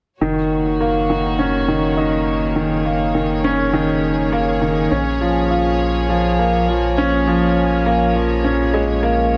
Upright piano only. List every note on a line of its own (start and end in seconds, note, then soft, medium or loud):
0.21 0.38 D#3 medium
0.81 1.08 A#3 medium
1.10 1.37 D#3 medium
1.39 1.55 C#4 medium
1.68 1.85 D#3 medium
1.97 2.14 D#4 medium
2.56 2.84 D#3 medium
2.85 3.13 A#3 medium
3.15 3.43 D#3 medium
3.44 3.61 C#4 medium
3.73 3.90 D#3 medium
4.32 4.60 A#3 medium
4.62 4.90 D#3 medium
4.91 5.08 C#4 medium
5.21 5.38 F3 medium
5.51 5.67 F4 medium
6.09 6.37 F3 medium
6.39 6.67 A#3 medium
6.69 6.96 F3 medium
6.98 7.14 C#4 medium
7.27 7.44 F3 medium
7.86 8.14 A#3 medium
8.15 8.43 F3 medium
8.44 8.61 C#4 medium
8.74 9.02 G#3 medium
9.03 9.31 A#3 medium